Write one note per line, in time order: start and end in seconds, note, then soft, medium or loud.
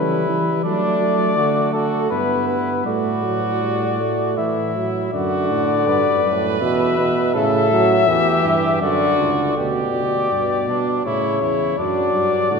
0.00 0.28 E3 medium
0.00 0.63 G3 medium
0.00 0.63 E4 medium
0.00 0.63 B4 medium
0.28 0.64 E3 medium
0.64 1.00 F#3 medium
0.64 2.08 A3 medium
0.64 1.36 D4 medium
0.64 1.71 D5 loud
1.00 1.38 F#3 medium
1.37 2.10 D3 medium
1.37 1.73 F#4 medium
1.73 2.13 F#4 medium
1.73 2.10 A4 medium
2.10 2.85 G2 medium
2.10 2.85 B3 medium
2.10 2.86 E4 medium
2.10 2.47 B4 medium
2.48 2.85 B4 medium
2.86 4.34 A2 medium
2.86 3.26 A3 medium
2.86 4.39 F#4 medium
2.86 4.34 D5 medium
3.24 3.63 F#3 medium
3.62 3.99 G3 medium
4.00 4.37 A3 medium
4.37 5.12 A2 medium
4.37 4.77 E3 medium
4.37 5.13 E4 medium
4.37 5.12 E5 medium
4.76 5.13 F#3 medium
5.13 5.52 F#2 medium
5.13 6.07 D3 medium
5.13 5.89 F#4 medium
5.13 6.44 D5 medium
5.50 5.87 A2 medium
5.87 6.23 G2 medium
5.87 7.36 B4 medium
6.24 6.62 F#2 medium
6.24 6.60 A2 medium
6.61 7.17 E2 medium
6.61 6.97 B2 medium
6.61 7.33 E5 medium
6.98 7.36 B2 loud
7.34 8.06 A2 medium
7.34 7.70 C#3 loud
7.34 7.91 A4 medium
7.34 8.79 E5 loud
7.71 8.09 F#3 loud
8.07 8.44 E2 medium
8.07 8.81 E3 loud
8.07 8.81 G4 medium
8.44 8.83 G2 medium
8.82 9.19 F#2 medium
8.82 9.55 D3 loud
8.82 9.56 F#4 medium
8.82 9.55 D5 medium
9.19 9.56 C#2 medium
9.56 9.92 D2 medium
9.56 10.27 B2 medium
9.56 10.65 G4 medium
9.56 11.01 D5 medium
9.94 10.31 D2 medium
10.31 10.70 G2 medium
10.31 11.07 B2 medium
10.68 11.04 B2 medium
10.68 11.05 D4 medium
11.05 11.41 A2 medium
11.05 11.78 C#3 medium
11.05 11.41 E4 medium
11.05 11.79 C#5 medium
11.42 11.77 E2 medium
11.42 11.77 E4 medium
11.78 12.14 F#2 medium
11.78 12.50 F#3 medium
11.78 12.50 D4 medium
11.78 12.60 D5 medium
12.15 12.52 G2 medium
12.51 12.60 A2 medium
12.51 12.60 D3 medium
12.51 12.60 F#4 medium